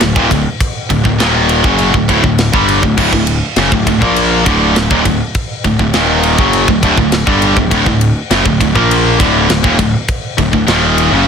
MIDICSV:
0, 0, Header, 1, 4, 480
1, 0, Start_track
1, 0, Tempo, 592885
1, 493, Time_signature, 4, 2, 24, 8
1, 9129, End_track
2, 0, Start_track
2, 0, Title_t, "Distorted electric guitar"
2, 0, Program_c, 0, 30
2, 10, Note_on_c, 0, 38, 70
2, 15, Note_on_c, 0, 45, 78
2, 126, Note_off_c, 0, 38, 0
2, 129, Note_on_c, 0, 39, 92
2, 131, Note_off_c, 0, 45, 0
2, 135, Note_on_c, 0, 46, 109
2, 244, Note_off_c, 0, 39, 0
2, 247, Note_off_c, 0, 46, 0
2, 249, Note_on_c, 0, 38, 77
2, 254, Note_on_c, 0, 45, 77
2, 371, Note_off_c, 0, 38, 0
2, 374, Note_off_c, 0, 45, 0
2, 735, Note_on_c, 0, 38, 68
2, 738, Note_on_c, 0, 45, 77
2, 844, Note_off_c, 0, 38, 0
2, 847, Note_off_c, 0, 45, 0
2, 854, Note_on_c, 0, 38, 63
2, 856, Note_on_c, 0, 45, 75
2, 969, Note_off_c, 0, 38, 0
2, 973, Note_on_c, 0, 39, 88
2, 974, Note_off_c, 0, 45, 0
2, 977, Note_on_c, 0, 46, 102
2, 980, Note_on_c, 0, 51, 103
2, 1327, Note_off_c, 0, 39, 0
2, 1329, Note_off_c, 0, 46, 0
2, 1330, Note_off_c, 0, 51, 0
2, 1332, Note_on_c, 0, 42, 93
2, 1336, Note_on_c, 0, 49, 108
2, 1341, Note_on_c, 0, 54, 104
2, 1565, Note_off_c, 0, 42, 0
2, 1568, Note_off_c, 0, 49, 0
2, 1569, Note_on_c, 0, 38, 61
2, 1571, Note_off_c, 0, 54, 0
2, 1574, Note_on_c, 0, 45, 65
2, 1681, Note_off_c, 0, 38, 0
2, 1688, Note_off_c, 0, 45, 0
2, 1691, Note_on_c, 0, 38, 88
2, 1698, Note_on_c, 0, 45, 105
2, 1806, Note_off_c, 0, 38, 0
2, 1809, Note_off_c, 0, 45, 0
2, 1814, Note_on_c, 0, 38, 71
2, 1818, Note_on_c, 0, 45, 72
2, 2007, Note_off_c, 0, 38, 0
2, 2009, Note_off_c, 0, 45, 0
2, 2051, Note_on_c, 0, 43, 87
2, 2056, Note_on_c, 0, 50, 94
2, 2059, Note_on_c, 0, 55, 101
2, 2284, Note_off_c, 0, 43, 0
2, 2288, Note_on_c, 0, 38, 68
2, 2289, Note_off_c, 0, 50, 0
2, 2290, Note_off_c, 0, 55, 0
2, 2293, Note_on_c, 0, 45, 77
2, 2394, Note_off_c, 0, 38, 0
2, 2402, Note_off_c, 0, 45, 0
2, 2403, Note_on_c, 0, 38, 102
2, 2412, Note_on_c, 0, 45, 111
2, 2517, Note_off_c, 0, 38, 0
2, 2522, Note_off_c, 0, 45, 0
2, 2526, Note_on_c, 0, 38, 68
2, 2532, Note_on_c, 0, 45, 80
2, 2723, Note_off_c, 0, 38, 0
2, 2726, Note_off_c, 0, 45, 0
2, 2888, Note_on_c, 0, 42, 98
2, 2894, Note_on_c, 0, 49, 99
2, 3004, Note_off_c, 0, 42, 0
2, 3008, Note_off_c, 0, 49, 0
2, 3008, Note_on_c, 0, 38, 70
2, 3012, Note_on_c, 0, 45, 73
2, 3117, Note_off_c, 0, 38, 0
2, 3120, Note_off_c, 0, 45, 0
2, 3127, Note_on_c, 0, 38, 69
2, 3130, Note_on_c, 0, 45, 76
2, 3239, Note_off_c, 0, 38, 0
2, 3242, Note_on_c, 0, 46, 100
2, 3244, Note_off_c, 0, 45, 0
2, 3247, Note_on_c, 0, 53, 100
2, 3251, Note_on_c, 0, 58, 103
2, 3594, Note_off_c, 0, 46, 0
2, 3597, Note_on_c, 0, 38, 96
2, 3601, Note_off_c, 0, 53, 0
2, 3604, Note_on_c, 0, 45, 96
2, 3605, Note_off_c, 0, 58, 0
2, 3608, Note_on_c, 0, 50, 110
2, 3839, Note_off_c, 0, 38, 0
2, 3842, Note_off_c, 0, 45, 0
2, 3844, Note_off_c, 0, 50, 0
2, 3848, Note_on_c, 0, 38, 62
2, 3852, Note_on_c, 0, 45, 76
2, 3963, Note_off_c, 0, 38, 0
2, 3966, Note_on_c, 0, 39, 91
2, 3968, Note_off_c, 0, 45, 0
2, 3971, Note_on_c, 0, 46, 105
2, 4083, Note_off_c, 0, 39, 0
2, 4086, Note_off_c, 0, 46, 0
2, 4088, Note_on_c, 0, 38, 72
2, 4090, Note_on_c, 0, 45, 80
2, 4211, Note_off_c, 0, 38, 0
2, 4213, Note_off_c, 0, 45, 0
2, 4569, Note_on_c, 0, 38, 66
2, 4572, Note_on_c, 0, 45, 83
2, 4677, Note_off_c, 0, 38, 0
2, 4681, Note_off_c, 0, 45, 0
2, 4686, Note_on_c, 0, 38, 67
2, 4691, Note_on_c, 0, 45, 74
2, 4802, Note_off_c, 0, 38, 0
2, 4805, Note_on_c, 0, 39, 93
2, 4809, Note_off_c, 0, 45, 0
2, 4812, Note_on_c, 0, 46, 103
2, 4812, Note_on_c, 0, 51, 106
2, 5160, Note_off_c, 0, 39, 0
2, 5163, Note_on_c, 0, 42, 95
2, 5165, Note_off_c, 0, 46, 0
2, 5165, Note_off_c, 0, 51, 0
2, 5169, Note_on_c, 0, 49, 104
2, 5174, Note_on_c, 0, 54, 100
2, 5401, Note_off_c, 0, 42, 0
2, 5404, Note_off_c, 0, 49, 0
2, 5406, Note_off_c, 0, 54, 0
2, 5412, Note_on_c, 0, 38, 69
2, 5412, Note_on_c, 0, 45, 74
2, 5512, Note_off_c, 0, 38, 0
2, 5516, Note_off_c, 0, 45, 0
2, 5522, Note_on_c, 0, 38, 99
2, 5525, Note_on_c, 0, 45, 93
2, 5628, Note_off_c, 0, 38, 0
2, 5632, Note_off_c, 0, 45, 0
2, 5637, Note_on_c, 0, 38, 69
2, 5641, Note_on_c, 0, 45, 76
2, 5837, Note_off_c, 0, 38, 0
2, 5839, Note_off_c, 0, 45, 0
2, 5880, Note_on_c, 0, 43, 100
2, 5888, Note_on_c, 0, 50, 103
2, 5890, Note_on_c, 0, 55, 94
2, 6118, Note_off_c, 0, 43, 0
2, 6122, Note_off_c, 0, 50, 0
2, 6123, Note_off_c, 0, 55, 0
2, 6127, Note_on_c, 0, 38, 71
2, 6131, Note_on_c, 0, 45, 69
2, 6227, Note_off_c, 0, 38, 0
2, 6234, Note_off_c, 0, 45, 0
2, 6237, Note_on_c, 0, 38, 99
2, 6243, Note_on_c, 0, 45, 105
2, 6355, Note_off_c, 0, 38, 0
2, 6358, Note_off_c, 0, 45, 0
2, 6364, Note_on_c, 0, 38, 66
2, 6368, Note_on_c, 0, 45, 76
2, 6559, Note_off_c, 0, 38, 0
2, 6561, Note_off_c, 0, 45, 0
2, 6723, Note_on_c, 0, 42, 91
2, 6729, Note_on_c, 0, 49, 105
2, 6835, Note_off_c, 0, 42, 0
2, 6839, Note_on_c, 0, 38, 68
2, 6840, Note_off_c, 0, 49, 0
2, 6843, Note_on_c, 0, 45, 74
2, 6951, Note_off_c, 0, 38, 0
2, 6954, Note_off_c, 0, 45, 0
2, 6960, Note_on_c, 0, 38, 66
2, 6964, Note_on_c, 0, 45, 67
2, 7076, Note_off_c, 0, 38, 0
2, 7079, Note_on_c, 0, 46, 92
2, 7082, Note_off_c, 0, 45, 0
2, 7085, Note_on_c, 0, 53, 97
2, 7086, Note_on_c, 0, 58, 110
2, 7435, Note_off_c, 0, 46, 0
2, 7438, Note_off_c, 0, 53, 0
2, 7438, Note_on_c, 0, 38, 87
2, 7440, Note_off_c, 0, 58, 0
2, 7441, Note_on_c, 0, 45, 92
2, 7447, Note_on_c, 0, 50, 101
2, 7666, Note_off_c, 0, 38, 0
2, 7672, Note_off_c, 0, 45, 0
2, 7676, Note_on_c, 0, 38, 67
2, 7680, Note_off_c, 0, 50, 0
2, 7682, Note_on_c, 0, 45, 65
2, 7791, Note_off_c, 0, 38, 0
2, 7794, Note_on_c, 0, 39, 95
2, 7798, Note_off_c, 0, 45, 0
2, 7801, Note_on_c, 0, 46, 110
2, 7912, Note_off_c, 0, 39, 0
2, 7915, Note_on_c, 0, 38, 66
2, 7917, Note_off_c, 0, 46, 0
2, 7920, Note_on_c, 0, 45, 72
2, 8042, Note_off_c, 0, 38, 0
2, 8044, Note_off_c, 0, 45, 0
2, 8399, Note_on_c, 0, 38, 66
2, 8402, Note_on_c, 0, 45, 74
2, 8503, Note_off_c, 0, 38, 0
2, 8506, Note_off_c, 0, 45, 0
2, 8513, Note_on_c, 0, 38, 71
2, 8516, Note_on_c, 0, 45, 74
2, 8631, Note_off_c, 0, 38, 0
2, 8634, Note_on_c, 0, 39, 97
2, 8639, Note_off_c, 0, 45, 0
2, 8642, Note_on_c, 0, 46, 101
2, 8642, Note_on_c, 0, 51, 105
2, 8993, Note_off_c, 0, 39, 0
2, 8996, Note_on_c, 0, 42, 94
2, 8997, Note_off_c, 0, 51, 0
2, 8998, Note_off_c, 0, 46, 0
2, 9003, Note_on_c, 0, 49, 105
2, 9115, Note_off_c, 0, 42, 0
2, 9118, Note_off_c, 0, 49, 0
2, 9129, End_track
3, 0, Start_track
3, 0, Title_t, "Picked electric bass"
3, 0, Program_c, 1, 34
3, 7, Note_on_c, 1, 26, 81
3, 121, Note_off_c, 1, 26, 0
3, 126, Note_on_c, 1, 27, 98
3, 241, Note_off_c, 1, 27, 0
3, 250, Note_on_c, 1, 26, 82
3, 363, Note_off_c, 1, 26, 0
3, 731, Note_on_c, 1, 26, 86
3, 844, Note_off_c, 1, 26, 0
3, 849, Note_on_c, 1, 26, 85
3, 963, Note_off_c, 1, 26, 0
3, 973, Note_on_c, 1, 27, 92
3, 1309, Note_off_c, 1, 27, 0
3, 1329, Note_on_c, 1, 30, 98
3, 1555, Note_off_c, 1, 30, 0
3, 1570, Note_on_c, 1, 26, 78
3, 1684, Note_off_c, 1, 26, 0
3, 1692, Note_on_c, 1, 26, 99
3, 1805, Note_off_c, 1, 26, 0
3, 1808, Note_on_c, 1, 26, 81
3, 2035, Note_off_c, 1, 26, 0
3, 2053, Note_on_c, 1, 31, 96
3, 2277, Note_off_c, 1, 31, 0
3, 2291, Note_on_c, 1, 26, 89
3, 2405, Note_off_c, 1, 26, 0
3, 2410, Note_on_c, 1, 26, 91
3, 2524, Note_off_c, 1, 26, 0
3, 2531, Note_on_c, 1, 26, 82
3, 2757, Note_off_c, 1, 26, 0
3, 2886, Note_on_c, 1, 30, 99
3, 3002, Note_off_c, 1, 30, 0
3, 3011, Note_on_c, 1, 26, 79
3, 3125, Note_off_c, 1, 26, 0
3, 3134, Note_on_c, 1, 26, 81
3, 3246, Note_off_c, 1, 26, 0
3, 3254, Note_on_c, 1, 34, 104
3, 3589, Note_off_c, 1, 34, 0
3, 3614, Note_on_c, 1, 26, 93
3, 3838, Note_off_c, 1, 26, 0
3, 3856, Note_on_c, 1, 26, 81
3, 3967, Note_off_c, 1, 26, 0
3, 3974, Note_on_c, 1, 27, 96
3, 4086, Note_off_c, 1, 27, 0
3, 4092, Note_on_c, 1, 26, 81
3, 4205, Note_off_c, 1, 26, 0
3, 4571, Note_on_c, 1, 26, 88
3, 4684, Note_off_c, 1, 26, 0
3, 4691, Note_on_c, 1, 26, 79
3, 4804, Note_off_c, 1, 26, 0
3, 4811, Note_on_c, 1, 27, 98
3, 5147, Note_off_c, 1, 27, 0
3, 5170, Note_on_c, 1, 30, 104
3, 5394, Note_off_c, 1, 30, 0
3, 5408, Note_on_c, 1, 26, 81
3, 5522, Note_off_c, 1, 26, 0
3, 5527, Note_on_c, 1, 26, 98
3, 5641, Note_off_c, 1, 26, 0
3, 5644, Note_on_c, 1, 26, 84
3, 5871, Note_off_c, 1, 26, 0
3, 5885, Note_on_c, 1, 31, 101
3, 6111, Note_off_c, 1, 31, 0
3, 6126, Note_on_c, 1, 26, 88
3, 6240, Note_off_c, 1, 26, 0
3, 6247, Note_on_c, 1, 26, 98
3, 6360, Note_off_c, 1, 26, 0
3, 6368, Note_on_c, 1, 26, 83
3, 6592, Note_off_c, 1, 26, 0
3, 6724, Note_on_c, 1, 30, 104
3, 6838, Note_off_c, 1, 30, 0
3, 6846, Note_on_c, 1, 26, 78
3, 6959, Note_off_c, 1, 26, 0
3, 6967, Note_on_c, 1, 26, 87
3, 7080, Note_off_c, 1, 26, 0
3, 7087, Note_on_c, 1, 34, 107
3, 7423, Note_off_c, 1, 34, 0
3, 7447, Note_on_c, 1, 26, 93
3, 7671, Note_off_c, 1, 26, 0
3, 7683, Note_on_c, 1, 26, 84
3, 7797, Note_off_c, 1, 26, 0
3, 7804, Note_on_c, 1, 27, 96
3, 7918, Note_off_c, 1, 27, 0
3, 7926, Note_on_c, 1, 26, 84
3, 8039, Note_off_c, 1, 26, 0
3, 8406, Note_on_c, 1, 26, 84
3, 8519, Note_off_c, 1, 26, 0
3, 8526, Note_on_c, 1, 26, 82
3, 8634, Note_off_c, 1, 26, 0
3, 8639, Note_on_c, 1, 27, 100
3, 8978, Note_off_c, 1, 27, 0
3, 9002, Note_on_c, 1, 30, 104
3, 9116, Note_off_c, 1, 30, 0
3, 9129, End_track
4, 0, Start_track
4, 0, Title_t, "Drums"
4, 5, Note_on_c, 9, 51, 112
4, 8, Note_on_c, 9, 38, 113
4, 86, Note_off_c, 9, 51, 0
4, 89, Note_off_c, 9, 38, 0
4, 129, Note_on_c, 9, 36, 116
4, 210, Note_off_c, 9, 36, 0
4, 251, Note_on_c, 9, 36, 93
4, 256, Note_on_c, 9, 51, 82
4, 332, Note_off_c, 9, 36, 0
4, 337, Note_off_c, 9, 51, 0
4, 490, Note_on_c, 9, 36, 113
4, 491, Note_on_c, 9, 51, 111
4, 571, Note_off_c, 9, 36, 0
4, 572, Note_off_c, 9, 51, 0
4, 730, Note_on_c, 9, 36, 92
4, 732, Note_on_c, 9, 51, 76
4, 811, Note_off_c, 9, 36, 0
4, 813, Note_off_c, 9, 51, 0
4, 851, Note_on_c, 9, 36, 88
4, 932, Note_off_c, 9, 36, 0
4, 972, Note_on_c, 9, 51, 104
4, 975, Note_on_c, 9, 38, 115
4, 1052, Note_off_c, 9, 51, 0
4, 1056, Note_off_c, 9, 38, 0
4, 1207, Note_on_c, 9, 51, 80
4, 1288, Note_off_c, 9, 51, 0
4, 1329, Note_on_c, 9, 36, 108
4, 1410, Note_off_c, 9, 36, 0
4, 1445, Note_on_c, 9, 51, 99
4, 1526, Note_off_c, 9, 51, 0
4, 1571, Note_on_c, 9, 36, 92
4, 1652, Note_off_c, 9, 36, 0
4, 1691, Note_on_c, 9, 36, 84
4, 1691, Note_on_c, 9, 51, 75
4, 1772, Note_off_c, 9, 36, 0
4, 1772, Note_off_c, 9, 51, 0
4, 1811, Note_on_c, 9, 36, 87
4, 1892, Note_off_c, 9, 36, 0
4, 1931, Note_on_c, 9, 51, 107
4, 1934, Note_on_c, 9, 38, 118
4, 2012, Note_off_c, 9, 51, 0
4, 2015, Note_off_c, 9, 38, 0
4, 2053, Note_on_c, 9, 36, 111
4, 2134, Note_off_c, 9, 36, 0
4, 2173, Note_on_c, 9, 51, 79
4, 2254, Note_off_c, 9, 51, 0
4, 2291, Note_on_c, 9, 36, 103
4, 2372, Note_off_c, 9, 36, 0
4, 2409, Note_on_c, 9, 49, 115
4, 2410, Note_on_c, 9, 36, 105
4, 2490, Note_off_c, 9, 49, 0
4, 2491, Note_off_c, 9, 36, 0
4, 2531, Note_on_c, 9, 36, 88
4, 2612, Note_off_c, 9, 36, 0
4, 2646, Note_on_c, 9, 51, 86
4, 2727, Note_off_c, 9, 51, 0
4, 2885, Note_on_c, 9, 51, 114
4, 2888, Note_on_c, 9, 38, 117
4, 2966, Note_off_c, 9, 51, 0
4, 2969, Note_off_c, 9, 38, 0
4, 3011, Note_on_c, 9, 36, 99
4, 3092, Note_off_c, 9, 36, 0
4, 3132, Note_on_c, 9, 36, 90
4, 3132, Note_on_c, 9, 51, 85
4, 3213, Note_off_c, 9, 36, 0
4, 3213, Note_off_c, 9, 51, 0
4, 3253, Note_on_c, 9, 36, 93
4, 3334, Note_off_c, 9, 36, 0
4, 3370, Note_on_c, 9, 51, 109
4, 3451, Note_off_c, 9, 51, 0
4, 3613, Note_on_c, 9, 36, 104
4, 3613, Note_on_c, 9, 51, 82
4, 3694, Note_off_c, 9, 36, 0
4, 3694, Note_off_c, 9, 51, 0
4, 3854, Note_on_c, 9, 51, 114
4, 3857, Note_on_c, 9, 38, 112
4, 3935, Note_off_c, 9, 51, 0
4, 3938, Note_off_c, 9, 38, 0
4, 3973, Note_on_c, 9, 36, 116
4, 4054, Note_off_c, 9, 36, 0
4, 4092, Note_on_c, 9, 36, 91
4, 4092, Note_on_c, 9, 51, 88
4, 4173, Note_off_c, 9, 36, 0
4, 4173, Note_off_c, 9, 51, 0
4, 4329, Note_on_c, 9, 51, 114
4, 4331, Note_on_c, 9, 36, 117
4, 4410, Note_off_c, 9, 51, 0
4, 4412, Note_off_c, 9, 36, 0
4, 4568, Note_on_c, 9, 51, 78
4, 4570, Note_on_c, 9, 36, 98
4, 4649, Note_off_c, 9, 51, 0
4, 4651, Note_off_c, 9, 36, 0
4, 4691, Note_on_c, 9, 36, 84
4, 4772, Note_off_c, 9, 36, 0
4, 4806, Note_on_c, 9, 51, 107
4, 4809, Note_on_c, 9, 38, 118
4, 4887, Note_off_c, 9, 51, 0
4, 4890, Note_off_c, 9, 38, 0
4, 5046, Note_on_c, 9, 51, 80
4, 5127, Note_off_c, 9, 51, 0
4, 5169, Note_on_c, 9, 36, 112
4, 5250, Note_off_c, 9, 36, 0
4, 5288, Note_on_c, 9, 51, 99
4, 5369, Note_off_c, 9, 51, 0
4, 5408, Note_on_c, 9, 36, 94
4, 5489, Note_off_c, 9, 36, 0
4, 5529, Note_on_c, 9, 36, 87
4, 5530, Note_on_c, 9, 51, 76
4, 5609, Note_off_c, 9, 36, 0
4, 5611, Note_off_c, 9, 51, 0
4, 5647, Note_on_c, 9, 36, 90
4, 5728, Note_off_c, 9, 36, 0
4, 5764, Note_on_c, 9, 51, 102
4, 5767, Note_on_c, 9, 38, 117
4, 5845, Note_off_c, 9, 51, 0
4, 5848, Note_off_c, 9, 38, 0
4, 5886, Note_on_c, 9, 36, 116
4, 5967, Note_off_c, 9, 36, 0
4, 6006, Note_on_c, 9, 51, 78
4, 6087, Note_off_c, 9, 51, 0
4, 6126, Note_on_c, 9, 36, 93
4, 6207, Note_off_c, 9, 36, 0
4, 6245, Note_on_c, 9, 36, 107
4, 6246, Note_on_c, 9, 51, 108
4, 6326, Note_off_c, 9, 36, 0
4, 6327, Note_off_c, 9, 51, 0
4, 6366, Note_on_c, 9, 36, 89
4, 6447, Note_off_c, 9, 36, 0
4, 6485, Note_on_c, 9, 51, 81
4, 6566, Note_off_c, 9, 51, 0
4, 6725, Note_on_c, 9, 51, 108
4, 6728, Note_on_c, 9, 38, 116
4, 6806, Note_off_c, 9, 51, 0
4, 6809, Note_off_c, 9, 38, 0
4, 6846, Note_on_c, 9, 36, 103
4, 6927, Note_off_c, 9, 36, 0
4, 6967, Note_on_c, 9, 36, 88
4, 6969, Note_on_c, 9, 51, 82
4, 7048, Note_off_c, 9, 36, 0
4, 7050, Note_off_c, 9, 51, 0
4, 7088, Note_on_c, 9, 36, 88
4, 7169, Note_off_c, 9, 36, 0
4, 7214, Note_on_c, 9, 51, 113
4, 7295, Note_off_c, 9, 51, 0
4, 7448, Note_on_c, 9, 36, 110
4, 7453, Note_on_c, 9, 51, 84
4, 7528, Note_off_c, 9, 36, 0
4, 7534, Note_off_c, 9, 51, 0
4, 7689, Note_on_c, 9, 51, 114
4, 7692, Note_on_c, 9, 38, 116
4, 7770, Note_off_c, 9, 51, 0
4, 7773, Note_off_c, 9, 38, 0
4, 7806, Note_on_c, 9, 36, 113
4, 7887, Note_off_c, 9, 36, 0
4, 7925, Note_on_c, 9, 36, 89
4, 7925, Note_on_c, 9, 51, 90
4, 8006, Note_off_c, 9, 36, 0
4, 8006, Note_off_c, 9, 51, 0
4, 8164, Note_on_c, 9, 51, 111
4, 8165, Note_on_c, 9, 36, 116
4, 8245, Note_off_c, 9, 51, 0
4, 8246, Note_off_c, 9, 36, 0
4, 8405, Note_on_c, 9, 36, 91
4, 8405, Note_on_c, 9, 51, 85
4, 8486, Note_off_c, 9, 36, 0
4, 8486, Note_off_c, 9, 51, 0
4, 8526, Note_on_c, 9, 36, 83
4, 8607, Note_off_c, 9, 36, 0
4, 8646, Note_on_c, 9, 51, 104
4, 8650, Note_on_c, 9, 38, 121
4, 8727, Note_off_c, 9, 51, 0
4, 8730, Note_off_c, 9, 38, 0
4, 8888, Note_on_c, 9, 51, 86
4, 8969, Note_off_c, 9, 51, 0
4, 9129, End_track
0, 0, End_of_file